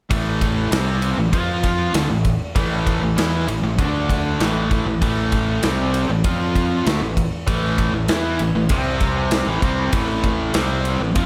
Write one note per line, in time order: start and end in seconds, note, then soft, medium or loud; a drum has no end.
0.09 0.68 A1 medium
0.09 0.70 A2 loud
0.09 0.71 E3 loud
0.09 0.71 A3 loud
0.09 kick loud
0.09 ride loud
0.41 kick medium
0.41 ride medium
0.72 1.15 C2 medium
0.72 1.17 C3 medium
0.72 1.17 G3 medium
0.72 1.18 C4 loud
0.72 snare loud
0.72 ride loud
1.02 ride medium
1.18 1.32 A1 medium
1.18 1.32 A2 medium
1.18 1.33 E3 medium
1.33 1.91 F2 medium
1.33 1.93 F3 medium
1.33 1.94 C4 medium
1.33 1.94 F4 loud
1.33 kick loud
1.33 ride loud
1.63 kick medium
1.63 ride medium
1.94 2.09 D2 medium
1.94 2.09 D3 medium
1.94 2.09 A3 loud
1.94 snare loud
1.94 ride loud
2.10 2.39 A1 medium
2.10 2.34 A2 medium
2.10 2.35 E3 medium
2.25 kick medium
2.25 ride medium
2.55 2.99 A1 medium
2.55 3.01 A2 loud
2.55 3.01 E3 loud
2.55 3.01 A3 loud
2.55 kick loud
2.55 ride loud
2.87 kick medium
2.87 ride medium
3.01 3.16 A1 medium
3.01 3.17 A2 medium
3.01 3.16 E3 medium
3.17 3.46 E2 medium
3.17 3.47 E3 medium
3.17 3.47 B3 medium
3.17 3.48 E4 loud
3.17 snare loud
3.17 ride medium
3.48 3.62 A1 medium
3.48 3.62 A2 medium
3.48 3.63 E3 medium
3.48 ride medium
3.63 3.78 A1 medium
3.63 3.79 A2 medium
3.63 3.79 E3 medium
3.79 4.36 D2 loud
3.79 4.40 D3 medium
3.79 4.40 A3 medium
3.79 4.40 D4 loud
3.79 kick loud
3.79 ride medium
4.10 kick medium
4.10 ride medium
4.40 4.83 A1 medium
4.40 4.85 A2 medium
4.40 4.86 E3 loud
4.40 4.86 A3 loud
4.40 snare loud
4.40 ride loud
4.71 kick medium
4.71 ride medium
4.86 5.01 A1 medium
4.86 5.00 A2 medium
4.86 5.01 E3 medium
5.01 5.59 A1 medium
5.01 5.62 A2 loud
5.01 5.63 E3 medium
5.01 5.63 A3 loud
5.01 kick loud
5.01 ride loud
5.32 kick medium
5.32 ride medium
5.63 6.06 C2 medium
5.63 6.08 C3 medium
5.63 6.09 G3 medium
5.63 6.09 C4 medium
5.63 snare loud
5.63 ride loud
5.94 ride medium
6.09 6.24 A1 medium
6.09 6.24 A2 medium
6.09 6.24 E3 medium
6.24 6.82 F2 medium
6.24 6.85 F3 medium
6.24 6.85 C4 medium
6.24 6.86 F4 medium
6.24 kick loud
6.24 ride loud
6.55 kick medium
6.55 ride medium
6.86 7.01 D2 medium
6.86 7.01 D3 medium
6.86 7.01 A3 loud
6.86 snare loud
6.86 ride loud
7.02 7.30 A1 medium
7.02 7.26 A2 medium
7.02 7.27 E3 medium
7.17 kick medium
7.17 ride medium
7.47 7.91 A1 medium
7.47 7.93 A2 loud
7.47 7.93 E3 medium
7.47 7.93 A3 loud
7.47 kick loud
7.47 ride loud
7.78 kick medium
7.78 ride medium
7.93 8.08 A1 medium
7.93 8.09 A2 medium
7.93 8.08 E3 medium
8.08 8.38 E2 medium
8.08 8.39 E3 medium
8.08 8.39 B3 medium
8.08 8.40 E4 loud
8.08 snare loud
8.08 ride loud
8.39 8.54 A1 medium
8.39 8.54 A2 medium
8.39 8.54 E3 medium
8.39 ride medium
8.55 8.69 A1 medium
8.55 8.70 A2 medium
8.55 8.70 E3 medium
8.69 9.43 C2 medium
8.69 9.46 C3 medium
8.69 9.47 G3 medium
8.69 9.47 C4 medium
8.69 kick loud
8.69 ride medium
9.00 kick medium
9.00 ride medium
9.31 snare loud
9.31 ride medium
9.47 9.62 A1 medium
9.47 9.62 A2 medium
9.47 9.62 E3 medium
9.62 9.91 C2 loud
9.62 9.92 C3 medium
9.62 9.93 G3 loud
9.62 9.93 C4 loud
9.62 kick medium
9.62 ride medium
9.93 10.51 A1 medium
9.93 10.53 A2 medium
9.93 10.54 E3 loud
9.93 10.55 A3 loud
9.93 kick loud
9.93 ride loud
10.24 kick medium
10.24 ride medium
10.54 10.98 C2 medium
10.54 11.00 C3 medium
10.54 11.00 G3 medium
10.54 11.00 C4 medium
10.54 snare loud
10.54 ride loud
10.85 ride medium
11.00 11.15 A1 medium
11.00 11.16 A2 medium
11.00 11.17 E3 medium
11.15 11.26 F2 medium
11.15 11.26 F3 medium
11.15 11.26 C4 medium
11.15 11.26 F4 loud
11.15 kick loud
11.15 ride medium